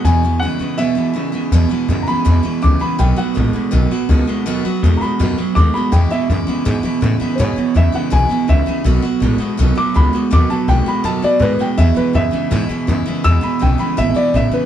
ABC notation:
X:1
M:4/4
L:1/8
Q:1/4=164
K:E
V:1 name="Upright piano"
g2 f2 e3 z | z3 [^ab]3 =d' b | =g f z6 | z3 [^ab]3 =d' b |
=g e z6 | [=c^c]2 e f g2 e2 | z4 z =d' b z | =d' a =g b a =d B g |
e B e6 | e' b =g b e =d e B |]
V:2 name="Steel-string acoustic guitar"
[E,,B,,E,G,B,E] [E,G,B,E] [E,G,B,E] [E,G,B,E] [E,,B,,E,G,B,E] [E,G,B,E] [E,G,B,E] [E,G,B,E] | [E,,B,,E,G,B,E] [E,G,B,E] [E,G,B,E] [E,G,B,E] [E,,B,,E,G,B,E] [E,G,B,E] [E,G,B,E] [E,G,B,E] | [B,,D,A,B,F] [A,B,F] [D,A,B,F] [A,B,F] [B,,D,A,B,F] [A,B,F] [D,A,B,F] [A,B,F] | [B,,D,A,B,F] [A,B,F] [D,A,B,F] [A,B,F] [B,,D,A,B,F] [A,B,F] [D,A,B,F] [A,B,F] |
[E,,B,,E,G,B,E] [E,G,B,E] [E,G,B,E] [E,G,B,E] [E,,B,,E,G,B,E] [E,G,B,E] [E,G,B,E] [E,G,B,E] | [E,,B,,E,G,B,E] [E,G,B,E] [E,G,B,E] [E,G,B,E] [E,,B,,E,G,B,E] [E,G,B,E] [E,G,B,E] [E,G,B,E] | [B,,D,A,B,F] [A,B,F] [D,A,B,F] [A,B,F] [B,,D,A,B,F] [A,B,F] [D,A,B,F] [A,B,F] | [B,,D,A,B,F] [A,B,F] [D,A,B,F] [A,B,F] [B,,D,A,B,F] [A,B,F] [D,A,B,F] [A,B,F] |
[E,,B,,E,G,B,E] [E,G,B,E] [E,G,B,E] [E,G,B,E] [E,,B,,E,G,B,E] [E,G,B,E] [E,G,B,E] [E,G,B,E] | [E,,B,,E,G,B,E] [E,G,B,E] [E,G,B,E] [E,G,B,E] [E,,B,,E,G,B,E] [E,G,B,E] [E,G,B,E] [E,G,B,E] |]
V:3 name="Clean electric guitar" clef=bass
[E,,B,,] [E,,B,,] [E,,C,] [E,,C,] [E,,B,,] [E,,B,,] [E,,C,] [E,,C,] | [E,,B,,] [E,,B,,] [E,,C,] [E,,C,] [E,,B,,] [E,,B,,] [E,,C,] [E,,C,] | [B,,F,] [B,,F,] [B,,G,] [B,,G,] [B,,F,] [B,,F,] [B,,G,] [B,,G,] | [B,,F,] [B,,F,] [B,,G,] [B,,G,] [B,,F,] [B,,F,] [B,,G,] [B,,G,] |
[E,,B,,] [E,,B,,] [E,,C,] [E,,C,] [E,,B,,] [E,,B,,] [E,,C,] [E,,C,] | [E,,B,,] [E,,B,,] [E,,C,] [E,,C,] [E,,B,,] [E,,B,,] [E,,C,] [E,,C,] | [B,,F,] [B,,F,] [B,,G,] [B,,G,] [B,,F,] [B,,F,] [B,,G,] [B,,G,] | [B,,F,] [B,,F,] [B,,G,] [B,,G,] [B,,F,] [B,,F,] [B,,G,] [B,,G,] |
[E,,B,,] [E,,B,,] [E,,C,] [E,,C,] [E,,B,,] [E,,B,,] [E,,C,] [E,,C,] | [E,,B,,] [E,,B,,] [E,,C,] [E,,C,] [E,,B,,] [E,,B,,] [E,,C,] [E,,C,] |]
V:4 name="Upright bass" clef=bass
E,,3 z4 z | E,, z F,, z E,, z C,, z | B,,, z A,,, z B,,, z C,, z | D,, z E,, z F,, z D,, z |
E,, z F,, z G,, z A,, z | G,, z E,, z B,,, z C,, z | B,,, z A,,, z B,,, z C,, z | D,, z B,,, z F,, z G,, z |
E,, z F,, z G,, z F,, z | E,, z B,,, z G,,, z A,,, z |]